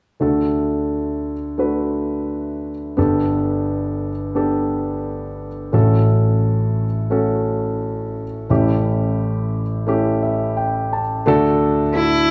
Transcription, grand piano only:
0.20 2.93 D2 medium
0.20 2.93 D3 medium
0.20 1.33 A3 medium
0.20 1.33 D4 medium
0.20 1.34 F#4 medium
0.20 1.34 A4 medium
1.58 2.71 A3 medium
1.58 2.71 D4 medium
1.58 2.71 F#4 medium
1.58 2.72 B4 medium
2.97 5.70 G1 medium
2.97 5.70 G2 medium
2.97 4.09 B3 medium
2.97 4.10 D4 medium
2.97 4.10 G4 medium
2.97 4.10 A4 medium
4.35 5.47 B3 medium
4.35 5.48 D4 medium
4.35 5.48 G4 medium
4.35 5.48 A4 medium
5.72 8.46 A1 medium
5.72 8.45 A2 medium
5.72 6.85 A3 medium
5.72 6.85 C#4 medium
5.72 6.86 F#4 medium
5.72 6.86 A4 medium
7.10 8.23 A3 medium
7.10 8.23 C#4 medium
7.10 8.24 F#4 medium
7.10 8.24 A4 medium
8.49 11.22 A1 medium
8.49 11.22 A2 medium
8.49 9.62 A3 medium
8.49 9.62 C#4 medium
8.49 9.62 E4 medium
8.49 9.63 G4 medium
9.87 10.99 A3 medium
9.87 11.00 C#4 medium
9.87 11.00 E4 medium
9.87 11.00 G4 medium
10.23 10.54 E5 medium
10.57 10.89 G5 medium
10.93 11.24 A5 medium
11.26 12.31 D2 medium
11.26 12.31 D3 medium
11.26 11.82 A3 medium
11.26 11.82 D4 medium
11.26 11.83 F#4 medium
11.26 11.83 A4 loud
11.94 12.31 A3 medium
11.94 12.31 D4 medium
11.94 12.31 F#4 medium
11.94 12.31 A4 medium

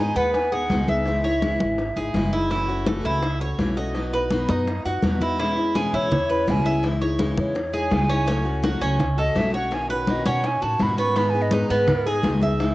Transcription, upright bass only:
0.15 0.66 D#2 medium
0.70 1.54 C#2 medium
1.61 1.94 G#1 medium
1.97 2.13 G#1 medium
2.14 2.99 F#1 medium
3.05 3.55 C#2 medium
3.58 4.43 B1 medium
4.49 4.83 F#2 medium
4.85 5.02 F#2 medium
5.03 5.87 E2 medium
5.93 6.44 E2 loud
6.47 7.32 C#2 medium
7.37 7.88 E2 medium
7.91 8.76 C#2 medium
8.81 9.32 C#2 loud
9.35 10.20 B1 medium
10.26 10.59 B2 medium
10.62 10.79 A2 medium
10.80 11.64 G#2 medium
11.70 12.20 G#2 medium
12.24 12.75 C#2 medium

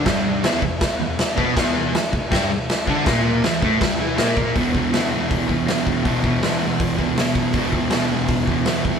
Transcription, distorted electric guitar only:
0.05 0.42 G2 loud
0.05 0.43 G3 loud
0.44 0.61 E2 medium
0.44 0.63 E3 loud
0.62 0.77 E2 medium
1.00 1.15 E2 medium
1.36 1.55 B2 medium
1.36 1.56 B3 loud
1.56 1.92 E2 loud
1.56 1.94 E3 loud
1.94 muted distorted electric guitar stroke medium
2.12 muted distorted electric guitar stroke medium
2.31 2.49 G2 loud
2.31 2.50 G3 loud
2.87 3.05 D3 loud
2.87 3.06 D4 loud
3.05 3.43 A#2 loud
3.05 3.43 A#3 loud
3.42 3.61 E2 medium
3.42 3.62 E3 loud
3.61 3.80 A2 medium
3.61 3.81 A3 medium
3.79 3.98 G2 medium
3.79 3.99 G3 loud
3.99 4.16 E3 loud
3.99 4.18 E4 loud
4.17 4.55 A#2 loud
4.17 4.55 A#3 loud
4.55 4.91 E2 medium
4.55 4.76 B2 loud
4.59 4.73 E3 loud
4.73 4.95 E3 medium
4.77 4.93 B2 medium
4.91 5.66 E2 medium
4.91 5.12 B2 loud
4.96 5.09 E3 loud
5.10 5.51 B2 medium
5.10 5.47 E3 medium
5.48 5.70 E3 medium
5.52 5.68 B2 medium
5.66 6.03 E2 medium
5.66 6.05 B2 medium
5.70 6.07 E3 medium
6.04 6.40 E2 loud
6.04 6.25 B2 loud
6.04 6.22 E3 loud
6.22 6.42 B2 medium
6.22 6.45 E3 medium
6.40 7.16 E2 loud
6.40 6.63 B2 loud
6.45 6.60 E3 loud
6.60 6.97 E3 medium
6.65 7.00 B2 soft
6.97 7.20 E3 medium
7.02 7.17 B2 medium
7.16 7.53 E2 medium
7.16 7.54 B2 medium
7.20 7.57 E3 medium
7.53 7.90 E2 medium
7.53 7.75 B2 loud
7.57 7.71 E3 loud
7.71 7.94 E3 medium
7.76 7.92 B2 medium
7.91 8.65 E2 loud
7.91 8.13 B2 loud
7.95 8.09 E3 loud
8.09 8.45 E3 medium
8.14 8.49 B2 medium
8.46 8.67 B2 medium
8.46 8.69 E3 medium
8.65 8.99 E2 medium
8.65 8.99 B2 medium
8.70 8.99 E3 medium

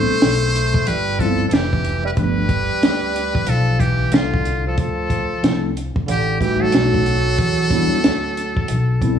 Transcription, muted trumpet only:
0.00 0.89 C5 loud
0.87 1.21 B4 loud
1.20 1.47 A4 medium
1.48 1.55 A4 medium
1.54 2.05 G4 medium
2.06 2.11 B4 medium
2.17 3.51 B4 medium
3.49 3.81 A4 medium
3.80 4.16 G4 medium
4.14 4.66 F4 medium
4.67 4.78 A4 medium
4.80 5.73 A4 medium
6.11 6.40 G4 medium
6.41 6.64 G4 medium
6.62 9.19 A4 loud

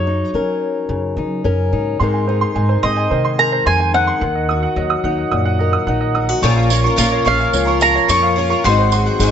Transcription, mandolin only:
0.00 1.41 C#5 medium
2.83 3.40 D#5 medium
3.39 3.66 A#5 medium
3.67 3.94 G#5 medium
3.94 5.01 F#5 medium
7.27 7.82 F5 medium
7.82 8.10 A#5 loud
8.10 8.65 C#6 loud
8.65 9.31 C6 loud

